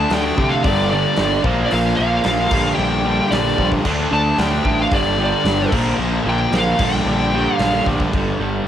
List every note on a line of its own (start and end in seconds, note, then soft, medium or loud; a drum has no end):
0.00 0.10 D3 medium
0.00 0.63 D3 medium
0.00 0.64 F3 loud
0.00 0.11 A3 loud
0.00 0.65 A3 medium
0.00 0.12 D4 loud
0.00 0.67 D4 loud
0.00 0.13 A5 loud
0.10 0.31 D2 medium
0.10 0.36 D3 medium
0.10 0.37 A3 loud
0.10 0.38 D4 loud
0.10 0.54 G5 medium
0.10 snare loud
0.10 open hi-hat medium
0.37 0.66 C3 medium
0.37 0.63 D3 medium
0.37 0.64 A3 medium
0.37 1.45 D4 loud
0.37 kick medium
0.50 0.64 F5 medium
0.64 1.05 G1 loud
0.64 0.90 G2 medium
0.64 0.91 D3 loud
0.64 0.91 G3 loud
0.64 1.45 A#3 loud
0.64 1.47 D4 loud
0.64 0.89 D5 medium
0.64 kick loud
0.64 open hi-hat medium
0.90 1.16 G2 medium
0.90 1.17 D3 medium
0.90 1.17 G3 loud
0.90 1.41 D5 medium
1.16 1.38 G1 medium
1.16 1.43 G2 medium
1.16 1.44 D3 medium
1.16 1.44 G3 medium
1.16 snare loud
1.16 open hi-hat medium
1.44 1.65 A#1 medium
1.44 1.70 A#2 medium
1.44 2.50 D3 medium
1.44 1.71 F3 loud
1.44 1.71 A#3 loud
1.44 2.53 D4 loud
1.44 kick loud
1.66 1.73 D5 medium
1.71 1.92 A#1 medium
1.71 1.97 A#2 loud
1.71 1.98 F3 loud
1.71 1.99 A#3 loud
1.71 1.95 F5 medium
1.71 open hi-hat medium
1.96 2.19 A#1 medium
1.96 2.23 A#2 loud
1.96 2.23 F3 loud
1.96 2.24 A#3 loud
1.96 2.80 F5 medium
2.24 2.45 A#1 medium
2.24 2.50 A#2 medium
2.24 2.50 F3 medium
2.24 2.51 A#3 medium
2.24 snare loud
2.24 open hi-hat medium
2.50 2.72 A#1 medium
2.50 2.77 G2 loud
2.50 3.84 A#2 loud
2.50 2.77 D3 medium
2.50 2.77 G3 loud
2.50 3.85 A#3 loud
2.50 3.87 D4 loud
2.50 kick loud
2.50 crash loud
2.75 3.18 A#1 loud
2.75 3.04 G2 loud
2.75 3.05 D3 loud
2.75 3.05 G3 loud
2.75 3.32 G5 loud
3.05 3.31 G2 medium
3.05 3.32 D3 medium
3.05 3.32 G3 medium
3.31 3.52 A#1 medium
3.31 3.58 G2 medium
3.31 3.59 D3 medium
3.31 3.58 G3 medium
3.31 3.69 D5 medium
3.31 snare loud
3.31 open hi-hat medium
3.58 3.78 A#1 loud
3.58 3.84 G2 medium
3.58 3.83 D3 medium
3.58 3.84 G3 medium
3.58 kick medium
3.72 kick medium
3.84 4.06 D2 medium
3.84 4.10 D3 loud
3.84 4.91 F3 medium
3.84 4.11 A3 loud
3.84 4.12 D4 loud
3.84 kick loud
3.84 crash loud
4.11 4.32 D2 medium
4.11 4.38 D3 medium
4.11 4.39 A3 loud
4.11 4.40 D4 loud
4.11 4.39 A5 loud
4.38 4.59 D2 medium
4.38 4.64 D3 medium
4.38 4.65 A3 medium
4.38 4.66 D4 medium
4.38 4.81 G5 loud
4.38 snare loud
4.38 open hi-hat medium
4.65 4.85 A1 medium
4.65 4.91 D3 medium
4.65 4.91 A3 medium
4.65 5.72 D4 medium
4.65 kick medium
4.82 4.94 F5 medium
4.91 5.32 G1 medium
4.91 5.17 G2 loud
4.91 5.18 D3 loud
4.91 5.19 G3 loud
4.91 5.72 A#3 loud
4.91 5.74 D4 loud
4.91 5.21 D5 loud
4.91 kick loud
4.91 open hi-hat medium
5.18 5.43 G2 medium
5.18 5.43 D3 loud
5.18 5.44 G3 loud
5.24 5.72 D5 medium
5.44 5.65 G1 medium
5.44 5.70 G2 medium
5.44 5.71 D3 medium
5.44 5.71 G3 medium
5.44 snare loud
5.44 open hi-hat medium
5.72 5.93 A#1 medium
5.72 5.97 A#2 loud
5.72 6.78 D3 loud
5.72 5.98 F3 loud
5.72 5.98 A#3 loud
5.72 6.79 D4 medium
5.72 kick loud
5.72 crash loud
5.98 6.18 A#1 medium
5.98 6.25 A#2 medium
5.98 6.26 F3 loud
5.98 6.26 A#3 loud
6.25 6.45 A#1 medium
6.25 6.51 A#2 loud
6.25 6.52 F3 loud
6.25 6.52 A#3 loud
6.29 6.55 G5 loud
6.52 6.72 A#1 medium
6.52 6.78 A#2 medium
6.52 6.78 F3 medium
6.52 6.78 A#3 medium
6.52 snare loud
6.52 open hi-hat medium
6.58 6.83 F5 loud
6.79 7.00 A#1 medium
6.79 7.07 G2 medium
6.79 8.12 A#2 medium
6.79 7.07 D3 loud
6.79 7.08 G3 loud
6.79 8.13 A#3 loud
6.79 8.13 D4 loud
6.79 kick loud
6.79 crash loud
6.85 7.55 G5 medium
7.05 7.45 A#1 loud
7.05 7.32 G2 loud
7.05 7.34 D3 loud
7.10 7.34 G3 loud
7.34 7.58 G2 medium
7.34 7.59 D3 medium
7.34 7.59 G3 loud
7.55 7.85 F5 medium
7.59 7.80 A#1 medium
7.59 7.85 G2 medium
7.59 7.86 D3 medium
7.59 7.86 G3 medium
7.59 snare loud
7.59 open hi-hat medium
7.86 8.06 A#1 medium
7.86 8.12 G2 medium
7.86 8.12 D3 medium
7.86 8.12 G3 medium
7.86 kick medium
8.00 kick medium
8.13 8.33 G1 medium
8.13 8.40 G2 loud
8.13 8.40 D3 loud
8.13 8.41 G3 loud
8.13 kick loud
8.13 crash medium
8.39 8.59 G1 medium
8.39 8.67 G2 medium
8.39 8.66 D3 loud
8.39 8.68 G3 loud